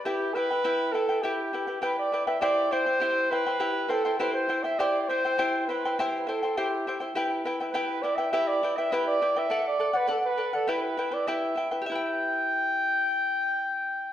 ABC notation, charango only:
X:1
M:2/4
L:1/16
Q:1/4=102
K:Em
V:1 name="Charango"
[EGBeg]2 [EBeg] [EBg] [EGBeg]2 [EBeg] [EBg] | [EGBeg]2 [EBeg] [EBg] [EGBeg]2 [EBeg] [EBg] | [EGceg]2 [Eceg] [Ecg] [EGceg]2 [Eceg] [Ecg] | [EGeg]2 [Eceg] [Ecg] [EGceg]2 [Eceg] [Ecg] |
[EGceg]2 [Eceg] [Ecg] [EGceg]2 [Eceg] [Ecg] | [EGceg]2 [Eceg] [Ecg] [EGceg]2 [Eceg] [Ecg] | [EGBeg]2 [EBeg] [EBg] [EGBeg]2 [EBeg] [EBg] | [EGBeg]2 [EBeg] [EBg] [EGBeg]2 [EBeg] [EBg] |
[Adf]2 [Adf] [df] [Adf]2 [Adf] [df] | [EGBeg]2 [EBeg] [EBg] [EGBeg]2 [EBeg] [EBg] | [EGBeg]8- | [EGBeg]8 |]